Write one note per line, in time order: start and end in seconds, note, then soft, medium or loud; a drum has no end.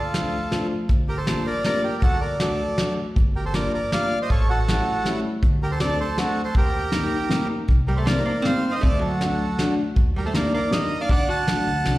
0.00 0.25 D2 medium
0.00 0.67 F4 medium
0.00 0.67 A4 medium
0.14 0.33 F3 medium
0.14 0.33 A3 soft
0.14 0.34 D4 soft
0.14 0.34 F4 medium
0.14 snare medium
0.14 closed hi-hat soft
0.51 0.70 F3 medium
0.51 0.70 A3 medium
0.51 0.71 D4 medium
0.51 0.71 F4 medium
0.51 snare medium
0.51 closed hi-hat soft
0.89 1.38 G1 medium
0.89 kick medium
0.89 closed hi-hat medium
1.08 1.17 G4 medium
1.08 1.18 A#4 medium
1.17 1.44 A4 medium
1.17 1.47 C5 medium
1.27 1.46 G3 medium
1.27 1.46 A#3 soft
1.27 1.46 D4 soft
1.27 1.47 F4 medium
1.27 snare medium
1.27 closed hi-hat medium
1.47 1.63 A#4 medium
1.47 1.64 D5 medium
1.64 1.84 G3 medium
1.64 1.84 A#3 soft
1.64 1.84 D4 medium
1.64 1.84 F4 medium
1.64 1.82 A#4 medium
1.64 1.85 D5 loud
1.64 snare medium
1.64 closed hi-hat soft
1.83 2.01 G4 medium
1.83 2.03 A#4 medium
2.02 2.51 D2 medium
2.02 2.20 F#4 medium
2.02 2.22 A4 loud
2.02 kick medium
2.02 closed hi-hat medium
2.21 2.39 A#4 medium
2.21 2.39 D5 medium
2.39 2.59 F#3 medium
2.39 2.59 A3 soft
2.39 2.59 D4 soft
2.39 2.60 F#4 medium
2.39 2.94 A4 medium
2.39 2.94 D5 medium
2.39 snare medium
2.39 closed hi-hat medium
2.78 2.97 F#3 medium
2.78 2.97 A3 soft
2.78 2.97 D4 soft
2.78 2.98 F#4 medium
2.78 snare medium
2.78 closed hi-hat soft
3.16 3.66 G1 medium
3.16 kick medium
3.16 closed hi-hat soft
3.36 3.44 G4 medium
3.36 3.45 A#4 medium
3.45 3.54 A4 medium
3.45 3.55 C5 medium
3.53 3.73 G3 soft
3.53 3.73 A#3 soft
3.53 3.74 D4 soft
3.53 3.74 F4 medium
3.53 3.72 A#4 medium
3.53 3.72 D5 medium
3.53 snare medium
3.53 closed hi-hat soft
3.74 3.91 A#4 medium
3.74 3.91 D5 medium
3.92 4.11 G3 medium
3.92 4.11 A#3 soft
3.92 4.11 D4 soft
3.92 4.12 F4 medium
3.92 4.19 D5 medium
3.92 4.19 F5 loud
3.92 snare medium
3.92 closed hi-hat soft
4.22 4.30 C5 medium
4.22 4.31 D#5 medium
4.30 4.79 A1 medium
4.30 4.48 A4 medium
4.30 4.50 C#5 medium
4.30 kick medium
4.30 closed hi-hat soft
4.49 5.20 F#4 medium
4.49 5.21 A4 medium
4.67 4.86 G3 medium
4.67 4.87 A3 soft
4.67 4.87 C#4 soft
4.67 4.87 E4 medium
4.67 snare medium
4.67 closed hi-hat medium
5.04 5.24 G3 medium
5.04 5.24 A3 medium
5.04 5.24 C#4 medium
5.04 5.24 E4 medium
5.04 snare medium
5.04 closed hi-hat soft
5.43 5.91 D2 medium
5.43 kick medium
5.43 closed hi-hat soft
5.63 5.71 G4 medium
5.63 5.72 A#4 medium
5.71 5.79 A4 medium
5.71 5.81 C5 medium
5.80 5.99 F#3 medium
5.80 5.99 A3 soft
5.80 5.99 C4 soft
5.80 6.00 D4 medium
5.80 5.98 A4 medium
5.80 6.00 D5 loud
5.80 snare medium
5.80 closed hi-hat medium
6.00 6.17 A4 medium
6.00 6.19 C5 medium
6.17 6.36 F#3 medium
6.17 6.37 A3 medium
6.17 6.37 C4 soft
6.17 6.37 D4 medium
6.17 6.42 F#4 medium
6.17 6.42 A4 medium
6.17 snare medium
6.17 closed hi-hat soft
6.43 6.55 A4 medium
6.43 6.56 C5 medium
6.54 7.04 D#2 medium
6.54 7.47 G4 medium
6.54 7.48 A#4 loud
6.54 kick medium
6.54 closed hi-hat soft
6.92 7.12 D#3 soft
6.92 7.12 G3 soft
6.92 7.12 A#3 soft
6.92 7.13 D#4 medium
6.92 snare medium
6.92 closed hi-hat medium
7.29 7.50 D#3 medium
7.29 7.50 G3 medium
7.29 7.50 A#3 medium
7.29 7.51 D#4 medium
7.29 snare medium
7.29 closed hi-hat soft
7.68 8.18 C2 medium
7.68 kick medium
7.68 closed hi-hat soft
7.88 7.97 G3 medium
7.88 7.97 G4 medium
7.88 7.98 A#4 medium
7.96 8.05 A3 medium
7.96 8.07 A4 medium
7.96 8.07 C5 medium
8.06 8.26 D#3 soft
8.06 8.27 G3 soft
8.06 8.25 A#3 medium
8.06 8.27 A#3 soft
8.06 8.27 C4 medium
8.06 8.25 A#4 medium
8.06 8.24 D5 loud
8.06 snare medium
8.06 closed hi-hat soft
8.25 8.42 A#3 medium
8.25 8.44 A#4 medium
8.25 8.45 D5 medium
8.42 8.65 D#3 soft
8.42 8.65 G3 soft
8.42 8.65 A#3 soft
8.42 8.70 C4 medium
8.42 8.74 F5 loud
8.42 snare medium
8.42 closed hi-hat soft
8.46 8.65 C4 medium
8.46 8.73 C5 medium
8.71 8.81 C4 medium
8.71 8.83 C5 medium
8.71 8.82 D#5 loud
8.81 9.32 D2 medium
8.81 9.00 A3 medium
8.81 8.99 A4 medium
8.81 9.03 D5 loud
8.81 kick medium
8.81 closed hi-hat soft
8.99 9.72 F#3 medium
8.99 9.73 A4 medium
9.04 9.75 F#4 medium
9.21 9.40 D3 medium
9.21 9.40 F#3 soft
9.21 9.41 A3 medium
9.21 9.41 D4 medium
9.21 snare medium
9.21 closed hi-hat medium
9.59 9.78 D3 medium
9.59 9.78 F#3 medium
9.59 9.78 A3 medium
9.59 9.78 D4 medium
9.59 snare medium
9.59 closed hi-hat soft
9.96 10.45 D#2 medium
9.96 kick medium
9.96 closed hi-hat soft
10.16 10.24 G3 medium
10.16 10.25 G4 medium
10.16 10.26 A#4 medium
10.25 10.34 A3 medium
10.25 10.33 A4 medium
10.25 10.35 C5 medium
10.34 10.53 D#3 medium
10.34 10.53 G3 soft
10.34 10.53 A#3 medium
10.34 10.52 A#3 medium
10.34 10.53 D4 medium
10.34 10.52 A#4 medium
10.34 10.53 D5 medium
10.34 snare medium
10.34 closed hi-hat soft
10.54 10.71 A#3 medium
10.54 10.71 A#4 medium
10.54 10.73 D5 medium
10.71 10.90 D#3 medium
10.71 10.90 G3 medium
10.71 10.91 A#3 soft
10.71 10.99 A#3 medium
10.71 10.91 D4 medium
10.71 10.98 A#4 medium
10.71 11.01 D#5 medium
10.71 snare medium
10.71 closed hi-hat soft
11.01 11.09 D4 medium
11.01 11.09 D5 medium
11.01 11.10 F5 loud
11.09 11.46 D2 medium
11.09 11.28 D4 medium
11.09 11.28 D5 medium
11.09 11.29 F#5 loud
11.09 kick medium
11.09 closed hi-hat soft
11.29 11.98 F#4 medium
11.29 11.98 F#5 medium
11.29 11.98 A5 loud
11.47 11.66 D3 soft
11.47 11.67 F#3 soft
11.47 11.67 A3 soft
11.47 11.67 D4 medium
11.47 snare medium
11.47 closed hi-hat medium
11.67 11.84 D2 medium
11.84 11.98 C2 medium
11.84 11.98 D3 medium
11.84 11.98 F#3 medium
11.84 11.98 A3 medium
11.84 11.98 D4 medium
11.84 snare medium
11.84 closed hi-hat soft